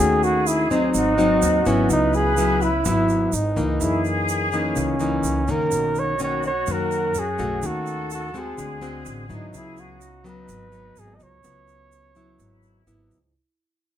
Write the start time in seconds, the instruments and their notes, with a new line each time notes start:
Already playing: nylon-string guitar A3 C#4 F#4, flugelhorn G#4
0.00 upright bass D#2, nylon-string guitar D#3, flute section G#4
0.23 flugelhorn F#4, shaker
0.47 flugelhorn E4, shaker
0.70 nylon-string guitar F#3 C4 D#4, flugelhorn D#4, shaker
0.94 upright bass G#1, nylon-string guitar G#2, flute section F#4, shaker
1.18 nylon-string guitar F#3 C4 D#4, shaker
1.42 upright bass D#2, shaker
1.66 upright bass G#1, nylon-string guitar F#3 B3 E4, flugelhorn C#4, shaker
1.90 upright bass C#2, nylon-string guitar C#3, flugelhorn D#4, flute section B4, shaker
2.13 flugelhorn G#4, shaker
2.37 nylon-string guitar F#3 B3 E4, shaker
2.61 flugelhorn E4, shaker
2.85 upright bass G#1, nylon-string guitar G#2 F#3 B3 E4, flugelhorn E4, shaker
3.09 shaker
3.33 upright bass G#1, flugelhorn D#4, shaker
3.56 upright bass C#2, nylon-string guitar E3 A#3 D#4, shaker
3.80 upright bass F#2, nylon-string guitar F#2, flugelhorn E4, flute section G#4, shaker
4.05 shaker
4.29 shaker
4.52 nylon-string guitar E3 A#3 D#4, flugelhorn C#4, shaker
4.76 upright bass C#2, nylon-string guitar C#3, shaker
5.00 nylon-string guitar E3 A#3 D#4, shaker
5.24 upright bass C#2, shaker
5.48 upright bass F#2, nylon-string guitar D#3 A#3 C#4, flugelhorn A#4, shaker
5.71 upright bass B1, nylon-string guitar B2, flute section F#4, shaker
5.95 flugelhorn C#5, shaker
6.19 nylon-string guitar D#3 A#3 C#4, flugelhorn C#5, shaker
6.43 flugelhorn C#5, shaker
6.67 nylon-string guitar F#2 D#3 A#3 C#4, upright bass F#2, shaker
6.72 flugelhorn A#4
6.91 shaker
7.14 upright bass F#2, shaker
7.19 flugelhorn G#4
7.39 upright bass B1, nylon-string guitar A3 C#4 F#4, shaker
7.62 upright bass D#2, nylon-string guitar D#3, flugelhorn F#4, flute section A4, shaker
7.86 shaker
8.11 flugelhorn F#4, shaker
8.34 nylon-string guitar G#3 C4 F#4, shaker
8.38 flugelhorn G#4
8.58 upright bass D2, nylon-string guitar D3, flute section G#4, shaker
8.81 nylon-string guitar G#3 C4 F#4, shaker
9.06 upright bass A1, shaker
9.29 upright bass G#2, nylon-string guitar F#3 B3 E4, flugelhorn D#4, shaker
9.53 upright bass C#2, nylon-string guitar C#3, flute section G#4, shaker
9.57 flugelhorn E4
9.77 flugelhorn F#4, shaker
10.01 flute section D#4, shaker
10.24 nylon-string guitar F#3 B3, flugelhorn B4, shaker
10.49 upright bass G#1, nylon-string guitar G#2, shaker
10.72 nylon-string guitar F#3 B3, shaker
10.96 upright bass G#1, flugelhorn G#4, shaker
11.15 flugelhorn D#5
11.20 upright bass C#2, flugelhorn C#5, shaker
11.44 upright bass C#2, nylon-string guitar C#3 F#3 B3, shaker
11.68 shaker
11.92 shaker
12.15 nylon-string guitar F#3 B3 E4, shaker
12.39 upright bass G#1, nylon-string guitar G#2, flute section E4, shaker
12.63 shaker
12.87 upright bass G#1, nylon-string guitar F#3 B3 E4, shaker
13.11 upright bass C#2, shaker